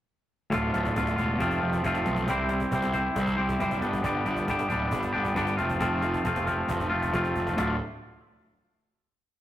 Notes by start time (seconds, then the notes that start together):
0.50 D1 D2 A2 D3 A3 F4, cajon bass
0.72 D1 D3 A3 F4, cajon slap
0.85 cajon bass
0.94 D1 A2 D3 A3 F4, cajon bass
1.07 cajon slap
1.16 E1 D3 A3 F4, cajon bass
1.38 F1 F2 C3 F3 A3 C4 F4, cajon bass
1.51 cajon bass
1.61 F1 F3 A3 C4 F4
1.73 cajon bass
1.83 F1 F2 C3 F3 A3 C4 F4, cajon bass
1.95 cajon slap
2.06 B1, cajon slap
2.16 cajon bass
2.28 C2 C3 G3 C4 E4 G4 C5, cajon bass
2.49 E4 G4 C5, cajon slap
2.53 C4
2.60 cajon bass
2.71 C2 C4 E4 G4, cajon bass, cajon slap
2.75 C5
2.82 cajon bass, cajon slap
2.93 C4 E4 G4 C5, cajon bass
3.16 C2, cajon bass
3.27 cajon bass
3.37 C2 C4 E4 G4 C5
3.49 cajon bass
3.58 F#1 C3 G3 C4 E4 G4, cajon bass, cajon slap
3.63 C5
3.71 cajon bass
3.81 G1 G2 D3 G3 B3 D4 G4, cajon slap
3.93 cajon bass
4.02 G1 G2 D3 G3 B3 D4, cajon bass
4.06 G4
4.25 G1 G3 B3 D4 G4, cajon slap
4.36 cajon bass
4.47 G1 G3 B3 D4 G4, cajon bass
4.59 cajon slap
4.69 D1 G3 B3 D4 G4, cajon bass
4.91 G1, cajon bass
5.03 cajon bass
5.13 G1 G3 B3 D4 G4
5.25 cajon bass
5.35 G1 G2 D3 G3 B3 D4 G4, cajon bass
5.47 cajon slap
5.57 F1 F2 C3 F3 A3 C4 F4, cajon slap
5.70 cajon bass
5.78 F1 F2 C3 F3 A3 C4 F4, cajon bass
6.01 F3 A3 C4 F4, cajon slap
6.14 cajon bass
6.23 F1 F3 A3 C4 F4, cajon bass, cajon slap
6.36 cajon bass, cajon slap
6.46 F3 A3 C4 F4, cajon bass
6.68 F1, cajon bass
6.80 cajon bass
6.90 F1 F3 A3 C4 F4
7.03 cajon bass
7.12 F1 F2 C3 F3 A3 C4 F4, cajon bass, cajon slap
7.24 cajon slap
7.36 F1, cajon bass
7.47 cajon bass
7.56 D1 D2 A2 D3 A3 F4, cajon bass, cajon slap